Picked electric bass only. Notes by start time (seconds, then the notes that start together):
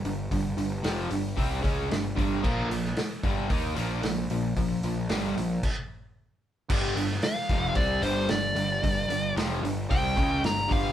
0.04 G1
0.31 G1
0.57 G1
0.84 F1
1.10 G1
1.37 C2
1.64 C#2
1.91 G1
2.17 G1
2.44 A#1
2.69 A#1
3.24 G1
3.50 D#2
3.77 A#1
4.04 A#1
4.30 A#1
4.56 A#1
4.83 A#1
5.11 G1
5.36 A#1
6.70 G1
6.95 G1
7.49 F1
7.76 C2
8.02 G1
8.29 G1
8.55 G1
8.84 G1
9.08 G1
9.35 F1
9.62 G1
9.91 C2
10.18 C#2
10.44 G1
10.71 G1